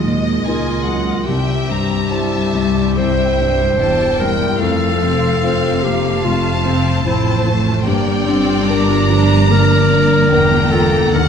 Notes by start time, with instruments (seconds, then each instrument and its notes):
Already playing: grand piano D#2 A#2 F#3 D#4 A#4, double bass section D#2, cello section D#2, harp D#3 F#3 D#4 A#4 D#5 A#5, viola section G#3, clarinet F4, violin section D#5
0.05 grand piano A#2
0.24 harp D#5
0.44 double bass section C#2, cello section C#2, grand piano D#4 A#4, clarinet F4, violin section G#5, harp A#5
0.65 harp D#5
0.84 grand piano F#3, violin section F#5
1.06 harp A#4
1.27 double bass section C2, cello section C2, grand piano C2, harp C3, viola section G3, clarinet G4, violin section E5 G5
1.47 harp G3
1.68 grand piano G2, harp C5, violin section A#5
1.89 harp G4
2.10 grand piano E4 C5, harp E5, violin section E5 A5
2.32 harp G4
2.53 grand piano G3, harp C5
2.76 harp E4
2.97 grand piano C2, harp C4, clarinet C5, violin section E5 G5
3.19 harp G3
3.39 grand piano G2, harp C5
3.59 harp G4
3.78 double bass section E1, cello section E2, viola section G3, grand piano E4 C5, harp E5, violin section G5 A5
4.00 harp G4
4.19 grand piano G3, clarinet A#4, harp C5, violin section G5
4.41 harp E4
4.60 double bass section F1, harp F2, grand piano F2, cello section F2, viola section A3, clarinet A4, violin section F5
5.03 grand piano C3, viola section C4, harp C5
5.43 viola section C4, grand piano F4 C5, violin section F5
5.83 grand piano F3, viola section A#3, clarinet G4, harp C5
6.23 grand piano F2, harp C3, viola section A3, clarinet F4, violin section A5
6.65 grand piano C3, viola section C4, harp C5
7.04 double bass section A1, cello section A2, grand piano F3 C5, viola section C4, clarinet E4, violin section C5
7.26 harp F4
7.45 grand piano F3, viola section A3, harp C5
7.66 harp F4
7.86 double bass section G1, harp G2, cello section G2, grand piano G2, viola section A#3, clarinet G4, violin section D5 G5
8.06 harp G3
8.27 grand piano D3, harp A#3, viola section C4
8.47 harp F4
8.67 viola section D4, grand piano D4 A#4, harp D5, violin section A#5
8.88 harp F4
9.09 grand piano F3, viola section D4
9.29 harp D4
9.50 grand piano G2, harp D3, viola section A#3, clarinet A#4, violin section D5
9.91 grand piano D3
10.11 harp F4
10.32 double bass section E1, cello section E2, grand piano D4 A#4, harp D5, violin section G5 A#5
10.52 harp F4
10.71 grand piano F4, clarinet A4
10.93 harp D4
11.14 double bass section D#2, cello section D#2, grand piano D#2, harp D#3, clarinet A#4, violin section F#5